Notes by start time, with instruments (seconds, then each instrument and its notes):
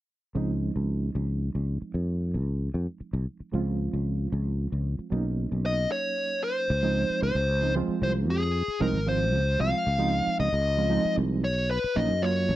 0.35 fretless electric bass C#2, reed electric piano F3 G#3 C4 D#4
0.76 fretless electric bass C#2
1.15 fretless electric bass C#2
1.55 fretless electric bass C#2
1.82 muted fretless electric bass stroke
1.94 fretless electric bass F2
2.34 fretless electric bass C#2
2.74 fretless electric bass F2
3.00 muted fretless electric bass stroke
3.13 fretless electric bass C2
3.40 muted fretless electric bass stroke
3.52 fretless electric bass C#2, reed electric piano F3 G#3 C4 F4
3.93 fretless electric bass C#2
4.32 fretless electric bass C#2
4.72 fretless electric bass C#2
4.99 muted fretless electric bass stroke
5.10 fretless electric bass B1, reed electric piano F#3 A#3 C#4 D#4
5.52 fretless electric bass B1
5.66 lead electric guitar D#5
5.92 lead electric guitar C#5
6.44 lead electric guitar C5
6.70 fretless electric bass C#2
6.83 reed electric piano F3 G#3 C4 D#4
7.10 muted fretless electric bass stroke
7.22 fretless electric bass C#2, lead electric guitar C5
7.35 fretless electric bass C#2
7.62 reed electric piano F3 G#3 C4 D#4
7.75 reed electric piano F3 G#3 C4 F4
7.88 muted fretless electric bass stroke
8.02 fretless electric bass C2, lead electric guitar C5
8.29 fretless electric bass F2, lead electric guitar G#4
8.68 muted fretless electric bass stroke
8.80 fretless electric bass C2, reed electric piano F3 G#3 C4 D#4, lead electric guitar A#4
8.94 fretless electric bass G#1
9.07 reed electric piano F3 G#3 C4 F4, lead electric guitar C5
9.33 fretless electric bass C#2
9.58 fretless electric bass C2, reed electric piano F3 G#3 C4 F4, lead electric guitar F5
9.87 fretless electric bass C#2
9.99 reed electric piano F3 G#3 C4 D#4
10.27 muted fretless electric bass stroke
10.40 fretless electric bass C#2, lead electric guitar D#5
10.53 fretless electric bass C#2
10.77 reed electric piano F3 G#3 C4 F4
10.90 reed electric piano F3 G#3 C4 D#4
11.05 muted fretless electric bass stroke
11.17 fretless electric bass C2
11.44 fretless electric bass B1, lead electric guitar C#5
11.71 lead electric guitar B4
11.84 muted fretless electric bass stroke
11.96 fretless electric bass A#1, reed electric piano F#3 A#3 C#4 D#4, lead electric guitar D#5
12.10 fretless electric bass F#2
12.22 reed electric piano F#3 A#3 C#4 F4, lead electric guitar C#5
12.49 fretless electric bass B1